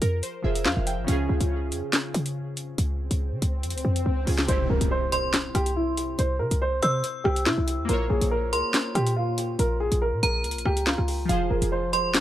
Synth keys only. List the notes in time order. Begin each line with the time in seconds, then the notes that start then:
Already playing: F3 F4 G#4 C5
0.02 A#4
0.23 C5
0.42 F3 F4 G#4 E5
0.46 C5
0.65 F5
0.87 G5
1.04 C#3 C#4
1.09 F4 G#4
4.25 C#3 C#4 F4
4.29 G#4
4.44 C3 C4
4.50 E4 G4
7.85 A#3 F4
7.90 C5 C#5
11.25 F3 F4
11.31 G#4 C5